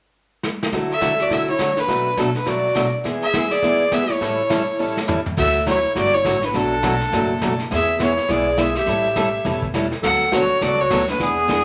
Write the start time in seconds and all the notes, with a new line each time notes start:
0.43 snare
0.63 snare
0.72 D3 F#3 A3 E4 F#4, brush sweep, kick, snare
0.92 A4 E5
1.01 D3 F#3 A3 E4 F#4, kick, snare, hi-hat pedal
1.19 F#4 D5, snare
1.30 D3 F#3 A3 E4 F#4 A4 E5, brush sweep, kick, snare
1.48 E4 C#5
1.58 D3 F#3 A3 E4 F#4, kick, snare, hi-hat pedal
1.77 D4 B4, snare
1.88 B2 F#3 A3 D4 F#4, brush sweep, kick, snare
2.17 B2 F#3 A3 D4 F#4 A4, kick, snare, hi-hat pedal
2.34 D4 B4, snare
2.46 B2 F#3 A3 D4 F#4 D5, brush sweep, kick, snare
2.75 B2 F#3 A3 D4 F#4, kick, snare, hi-hat pedal
3.04 E3 G#3 B3 E4 G#4, brush sweep, kick, snare
3.22 G#4 E5
3.33 E3 G#3 B3 E4 G#4, kick, snare, hi-hat pedal
3.50 G#4 D5, snare
3.62 E3 G#3 B3 E4 G#4, brush sweep, kick, snare
3.91 E3 G#3 B3 E4 G#4 E5, kick, snare, hi-hat pedal
4.09 E4 C#5, snare
4.21 A2 E3 G3 C#4 E4 A4, brush sweep, kick, snare
4.49 A2 E3 G3 C#4 E4 A4, kick, snare, hi-hat pedal
4.79 A2 E3 G3 C#4 E4 A4
4.97 snare
5.08 A2 E3 G3 C#4 E4 A4, floor tom, hi-hat pedal
5.26 floor tom
5.37 D2 D3 F#3 A3 E4 F#4 A4 E5, brush sweep, kick, snare, crash
5.66 D3 F#3 A3 E4 F#4 C#5, kick, snare, hi-hat pedal
5.95 G1 D3 F#3 A3 E4 F#4 D5, brush sweep, kick, snare
6.14 E4 C#5
6.25 A1 D3 F#3 A3 E4 F#4, kick, snare, hi-hat pedal
6.42 D4 B4, snare
6.54 B1 B2 F#3 A3 D4 F#4 A4, brush sweep, kick, snare
6.83 B2 F#3 A3 D4 F#4, kick, snare, hi-hat pedal
7.00 snare
7.12 F#1 B2 F#3 A3 D4 F#4, brush sweep, kick, snare
7.41 B2 F#3 A3 D4 F#4, kick, snare, hi-hat pedal
7.60 snare
7.71 E2 E3 G#3 B3 E4 G#4 E5, brush sweep, kick, snare
7.99 E3 G#3 B3 E4 G#4 C#5, kick, snare, hi-hat pedal
8.17 snare
8.28 B1 E3 G#3 B3 E4 G#4 D5, brush sweep, kick, snare
8.57 E3 G#3 B3 E4 G#4 E5, kick, snare, hi-hat pedal
8.75 G4 E5, snare
8.86 A1 E3 G3 C#4 E4 A4, brush sweep, kick, snare
9.16 E3 G3 C#4 E4 A4, kick, snare, hi-hat pedal
9.45 E1 E3 G3 C#4 E4 A4, brush sweep, kick, snare
9.62 kick
9.74 E3 G3 C#4 E4 A4, kick, snare, hi-hat pedal
9.92 snare
10.02 D2 D3 F#3 B3 F#4 A4 F#5, brush sweep, kick, snare
10.32 D3 F#3 B3 F#4 A4 C#5, kick, snare, hi-hat pedal
10.61 C#2 D3 F#3 B3 F#4 A4 D5, brush sweep, kick, snare
10.79 F#4 C#5
10.90 D2 D3 F#3 B3 F#4 A4, kick, snare, hi-hat pedal
11.00 snare
11.08 D4, snare
11.10 B4, snare
11.19 E2 E3 B3 D4 G#4, brush sweep, kick, snare
11.48 E3 B3 D4 G#4, kick, snare, hi-hat pedal